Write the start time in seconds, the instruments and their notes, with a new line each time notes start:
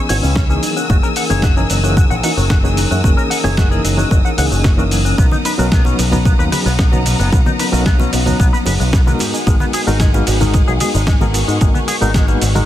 Already playing: string section B4 G#5 C#6 E6
0.09 picked electric bass G#1, reed electric piano E3 B3 C#4 D#4 F#4, synth arpeggio sound E4, clean electric guitar C#5, open hi-hat, shaker
0.23 picked electric bass C#2, clean electric guitar C#4, synth arpeggio sound C#4, shaker
0.36 synth arpeggio sound B3, clean electric guitar C#4, kick, snare, shaker
0.49 reed electric piano E3 A#3 C#4 D#4 G#4, clean electric guitar C#4, synth arpeggio sound C#4, shaker
0.63 clean electric guitar F#3, synth arpeggio sound D#4, string section A#4 D#6, open hi-hat, shaker
0.76 synth arpeggio sound C#4, clean electric guitar F#4, shaker
0.89 picked electric bass F#1, reed electric piano E3 A#3 C#4 D#4 G#4, synth arpeggio sound A#3, clean electric guitar F#4, kick, shaker
1.03 synth arpeggio sound C#4, clean electric guitar A#4, shaker
1.16 synth arpeggio sound D#4, clean electric guitar F#5, open hi-hat, shaker
1.30 picked electric bass F#1, reed electric piano E3 A#3 C#4 D#4 G#4, synth arpeggio sound C#4, clean electric guitar C#5, shaker
1.42 synth arpeggio sound A#3, clean electric guitar F#4, kick, snare, shaker
1.57 reed electric piano E3 A#3 C#4 D#4 A#4, synth arpeggio sound C#4, clean electric guitar G#4, shaker
1.70 picked electric bass F#1, clean electric guitar F#3, synth arpeggio sound D#4, open hi-hat, shaker
1.83 reed electric piano E3 A#3 C#4 D#4 G#4, synth arpeggio sound C#4, clean electric guitar F#4, shaker
1.97 synth arpeggio sound A#3, clean electric guitar F#4, kick, shaker
2.10 picked electric bass A#1, synth arpeggio sound C#4, clean electric guitar F#5, shaker
2.23 reed electric piano E3 A#3 C#4 D#4 F#4, synth arpeggio sound D#4, clean electric guitar F#5, open hi-hat, shaker
2.37 picked electric bass F#1, synth arpeggio sound C#4, clean electric guitar F#4, shaker
2.50 synth arpeggio sound A#3, clean electric guitar F#4, kick, snare, shaker
2.63 reed electric piano E3 A#3 C#4 D#4 G#4, synth arpeggio sound C#4, clean electric guitar F#4, shaker
2.77 clean electric guitar F#3, synth arpeggio sound D#4, open hi-hat, shaker
2.91 picked electric bass F#2, synth arpeggio sound C#4, clean electric guitar F#4, shaker
3.03 picked electric bass F#1, reed electric piano E3 A#3 C#4 D#4 G#4, synth arpeggio sound A#3, clean electric guitar F#4, kick, shaker
3.17 synth arpeggio sound C#4, clean electric guitar A#4, shaker
3.30 synth arpeggio sound D#4, clean electric guitar F#5, open hi-hat, shaker
3.44 picked electric bass F#1, reed electric piano E3 A#3 C#4 D#4 G#4, synth arpeggio sound C#4, clean electric guitar C#5, shaker
3.57 synth arpeggio sound A#3, clean electric guitar F#4, kick, snare, shaker
3.70 reed electric piano E3 A#3 C#4 D#4 A#4, synth arpeggio sound C#4, clean electric guitar G#4, shaker
3.84 picked electric bass F#1, clean electric guitar F#3, synth arpeggio sound D#4, open hi-hat, shaker
3.97 reed electric piano E3 A#3 C#4 D#4 G#4, synth arpeggio sound C#4, clean electric guitar F#4, shaker
4.11 picked electric bass F#1, synth arpeggio sound A#3, clean electric guitar F#4, kick, shaker
4.25 synth arpeggio sound C#4, clean electric guitar F#5, shaker
4.37 picked electric bass C#2, reed electric piano E3 A#3 C#4 D#4 G#4, synth arpeggio sound D#4, clean electric guitar F#5, open hi-hat, shaker
4.51 picked electric bass F#1, synth arpeggio sound C#4, clean electric guitar F#4, shaker
4.64 synth arpeggio sound A#3, clean electric guitar F#4, kick, snare, shaker
4.77 reed electric piano E3 A#3 C#4 D#4 A#4, synth arpeggio sound C#4, clean electric guitar F#4, shaker
4.91 clean electric guitar F#3, synth arpeggio sound D#4, open hi-hat, shaker
5.05 synth arpeggio sound C#4, clean electric guitar F#4, shaker
5.17 picked electric bass B1, reed electric piano F#3 B3 C#4 D#4 A#4, synth arpeggio sound A#3, clean electric guitar B3, string section F#5 A#5, kick, ride, shaker
5.31 synth arpeggio sound B3, clean electric guitar D#4, high conga, shaker
5.45 synth arpeggio sound D#4, clean electric guitar B4, open hi-hat, ride, shaker
5.58 picked electric bass B1, reed electric piano F#3 B3 C#4 D#4 A#4, synth arpeggio sound B3, clean electric guitar F#4, shaker
5.72 synth arpeggio sound A#3, clean electric guitar B3, kick, snare, ride, high conga, shaker
5.84 reed electric piano F#3 B3 C#4 D#4 B4, synth arpeggio sound B3, clean electric guitar C#4, muted conga, shaker
5.98 picked electric bass B1, clean electric guitar B2, synth arpeggio sound D#4, open hi-hat, ride, shaker
6.12 reed electric piano F#3 B3 C#4 D#4 A#5, clean electric guitar B3, synth arpeggio sound B3, high conga, low conga, shaker
6.25 synth arpeggio sound A#3, clean electric guitar B3, kick, ride, shaker
6.39 picked electric bass D#2, synth arpeggio sound B3, clean electric guitar B4, shaker
6.52 reed electric piano F#3 B3 C#4 D#4 G#4, synth arpeggio sound D#4, clean electric guitar B4, open hi-hat, ride, muted conga, high conga, shaker
6.65 picked electric bass B1, synth arpeggio sound B3, clean electric guitar B3, muted conga, shaker
6.79 synth arpeggio sound A#3, clean electric guitar B3, kick, snare, ride, shaker
6.92 reed electric piano F#3 B3 C#4 D#4 A#5, synth arpeggio sound B3, clean electric guitar B3, high conga, shaker
7.05 clean electric guitar B2, synth arpeggio sound D#4, open hi-hat, ride, muted conga, shaker
7.19 picked electric bass F#1, synth arpeggio sound B3, clean electric guitar B3, shaker
7.32 picked electric bass B1, reed electric piano F#3 B3 C#4 D#4 A#4, synth arpeggio sound A#3, clean electric guitar B3, kick, ride, shaker
7.46 synth arpeggio sound B3, clean electric guitar D#4, high conga, shaker
7.59 synth arpeggio sound D#4, clean electric guitar B4, open hi-hat, ride, shaker
7.72 picked electric bass B1, reed electric piano F#3 B3 C#4 D#4 A#4, synth arpeggio sound B3, clean electric guitar F#4, shaker
7.86 synth arpeggio sound A#3, clean electric guitar B3, kick, snare, ride, high conga, shaker
7.99 reed electric piano F#3 B3 C#4 D#4 B4, synth arpeggio sound B3, clean electric guitar C#4, muted conga, shaker
8.13 picked electric bass B1, clean electric guitar B2, synth arpeggio sound D#4, open hi-hat, ride, shaker
8.26 reed electric piano F#3 B3 C#4 D#4 A#5, clean electric guitar B3, synth arpeggio sound B3, high conga, low conga, shaker
8.40 picked electric bass B1, synth arpeggio sound A#3, clean electric guitar B3, kick, ride, shaker
8.53 synth arpeggio sound B3, clean electric guitar B4, shaker
8.66 picked electric bass F#1, reed electric piano F#3 B3 C#4 D#4 G#4, synth arpeggio sound D#4, clean electric guitar B4, open hi-hat, ride, muted conga, high conga, shaker
8.80 picked electric bass B1, clean electric guitar B3, synth arpeggio sound B3, shaker
8.93 synth arpeggio sound A#3, clean electric guitar B3, kick, snare, ride, shaker
9.06 reed electric piano G#3 B3 D#4 F#4 A#4, synth arpeggio sound B3, clean electric guitar B3, high conga, shaker
9.19 clean electric guitar G#2, synth arpeggio sound F#4, string section F#5 G#5, open hi-hat, ride, muted conga, shaker
9.34 clean electric guitar G#3, synth arpeggio sound D#4, shaker
9.46 picked electric bass G#1, reed electric piano G#3 B3 D#4 F#4 A#4, clean electric guitar G#3, synth arpeggio sound B3, kick, ride, shaker
9.60 clean electric guitar B3, synth arpeggio sound D#4, high conga, shaker
9.73 synth arpeggio sound F#4, clean electric guitar G#4, open hi-hat, ride, shaker
9.87 picked electric bass G#1, reed electric piano G#3 B3 D#4 F#4 A#4, clean electric guitar D#4, synth arpeggio sound D#4, shaker
10.00 clean electric guitar G#3, synth arpeggio sound B3, kick, snare, ride, high conga, shaker
10.14 reed electric piano G#3 B3 D#4 F#4 B4, clean electric guitar A#3, synth arpeggio sound D#4, muted conga, shaker
10.27 picked electric bass G#1, clean electric guitar G#2, synth arpeggio sound F#4, open hi-hat, ride, shaker
10.40 reed electric piano G#3 D#4 F#4 A#4, clean electric guitar G#3, synth arpeggio sound D#4, high conga, low conga, shaker
10.54 clean electric guitar G#3, synth arpeggio sound B3, kick, ride, shaker
10.67 picked electric bass B1, synth arpeggio sound D#4, clean electric guitar G#4, shaker
10.80 reed electric piano G#3 B3 D#4 F#4 G#4, synth arpeggio sound F#4, clean electric guitar G#4, open hi-hat, ride, muted conga, high conga, shaker
10.94 picked electric bass G#1, clean electric guitar G#3, synth arpeggio sound D#4, muted conga, shaker
11.07 clean electric guitar G#3, synth arpeggio sound B3, kick, snare, ride, shaker
11.21 reed electric piano G#3 B3 D#4 F#4 A#4, clean electric guitar G#3, synth arpeggio sound D#4, high conga, shaker
11.34 clean electric guitar G#2, synth arpeggio sound F#4, string section C#6, open hi-hat, ride, muted conga, shaker
11.48 picked electric bass G#2, clean electric guitar G#3, synth arpeggio sound D#4, shaker
11.61 picked electric bass G#1, reed electric piano G#3 B3 D#4 F#4 A#4, clean electric guitar G#3, synth arpeggio sound B3, kick, ride, shaker
11.74 clean electric guitar B3, synth arpeggio sound D#4, high conga, shaker
11.88 synth arpeggio sound F#4, clean electric guitar G#4, open hi-hat, ride, shaker
12.01 picked electric bass G#1, reed electric piano G#3 B3 D#4 F#4 A#4, clean electric guitar D#4, synth arpeggio sound D#4, shaker
12.14 clean electric guitar G#3, synth arpeggio sound B3, kick, snare, ride, high conga, shaker
12.28 reed electric piano G#3 B3 D#4 F#4 B4, clean electric guitar A#3, synth arpeggio sound D#4, muted conga, shaker
12.41 picked electric bass G#1, clean electric guitar G#2, synth arpeggio sound F#4, open hi-hat, ride, shaker
12.55 reed electric piano G#3 D#4 F#4 A#4, clean electric guitar G#3, synth arpeggio sound D#4, high conga, low conga, shaker